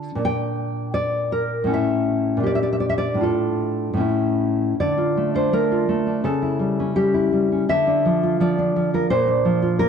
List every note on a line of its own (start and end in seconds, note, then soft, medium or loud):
0.00 0.15 D3 medium
0.00 0.17 D4 soft
0.00 0.18 F4 soft
0.00 0.20 A5 loud
0.15 1.63 A#2 medium
0.15 1.65 D4 soft
0.25 0.91 G5 loud
0.94 1.31 D5 medium
1.32 1.70 A#4 medium
1.64 2.40 A2 medium
1.64 2.41 C#4 soft
1.70 2.40 E4 soft
1.70 2.44 E5 medium
2.37 3.17 A#2 medium
2.37 3.16 D4 medium
2.43 3.20 G4 soft
2.43 2.55 D5 medium
2.55 2.62 E5 medium
2.63 2.71 D5 medium
2.73 2.80 E5 medium
2.80 2.89 D5 medium
2.89 2.97 E5 medium
2.98 3.23 D5 medium
3.14 3.92 A2 medium
3.14 3.96 D4 soft
3.21 3.98 F4 soft
3.21 3.99 A4 medium
3.94 4.73 A2 medium
3.94 4.74 C#4 soft
4.00 4.76 E4 soft
4.80 6.21 D3 medium
4.80 5.33 D5 medium
4.98 5.70 F4 soft
5.17 5.52 A3 soft
5.35 6.05 D4 soft
5.35 5.53 C5 medium
5.53 5.87 A3 medium
5.53 6.21 A#4 loud
5.72 6.25 F4 medium
5.89 6.24 A3 medium
6.07 6.24 D4 soft
6.24 7.66 C#3 medium
6.24 6.93 A4 medium
6.42 7.13 E4 soft
6.59 6.95 G3 soft
6.80 7.51 C#4 soft
6.96 7.31 G3 medium
6.96 7.67 G4 medium
7.14 7.69 E4 medium
7.33 7.70 G3 medium
7.52 7.69 C#4 soft
7.69 9.05 D3 medium
7.69 8.37 E5 loud
7.87 8.57 D4 medium
8.05 8.39 F3 soft
8.23 8.92 F4 medium
8.40 8.75 F3 medium
8.40 8.91 D5 medium
8.59 9.10 D4 medium
8.76 9.10 F3 medium
8.94 9.10 F4 medium
8.94 9.10 A#4 medium
9.10 9.89 A#2 medium
9.10 9.75 C5 loud
9.28 9.89 D4 medium
9.45 9.89 F3 medium
9.62 9.89 F4 medium
9.79 9.89 A#3 medium
9.79 9.89 A#4 loud